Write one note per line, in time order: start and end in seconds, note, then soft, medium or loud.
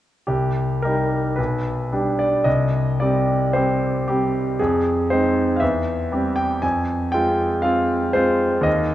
0.27 0.82 C2 soft
0.27 0.83 G4 soft
0.83 1.34 G3 soft
0.83 1.35 D#4 soft
0.83 1.34 G4 soft
0.83 1.37 A#4 soft
1.36 1.91 B1 soft
1.36 2.18 B4 soft
1.92 2.42 G3 soft
1.92 2.42 D4 soft
1.92 2.42 G4 soft
2.19 2.46 D5 soft
2.44 2.98 C2 soft
2.44 2.99 D#5 soft
3.00 3.50 G3 soft
3.00 3.50 C4 soft
3.00 3.50 G4 soft
3.00 3.53 D5 soft
3.53 4.03 G3 soft
3.53 4.04 C4 soft
3.53 4.04 G4 soft
3.53 4.07 C5 soft
4.08 4.56 G3 soft
4.08 4.56 C4 soft
4.08 4.59 G4 soft
4.59 5.10 F2 soft
4.59 5.10 G#4 soft
5.10 5.59 G#3 soft
5.10 5.59 C4 soft
5.10 5.59 D#4 soft
5.10 5.55 C5 soft
5.56 6.37 E5 soft
5.56 5.62 F5 soft
5.62 6.11 E2 soft
6.12 6.58 G3 soft
6.12 6.59 C4 soft
6.12 6.59 G4 soft
6.36 6.62 G5 soft
6.62 7.12 F2 soft
6.62 7.13 G#5 medium
7.12 7.60 G#3 soft
7.12 7.61 C4 soft
7.12 7.60 F4 soft
7.12 7.63 G5 medium
7.62 8.11 G#3 soft
7.62 8.11 C4 soft
7.62 8.11 F4 soft
7.62 8.14 F5 medium
8.13 8.62 G#3 soft
8.13 8.62 C4 soft
8.13 8.62 F4 soft
8.13 8.65 C5 soft
8.61 8.95 D#2 soft
8.61 8.95 D#5 medium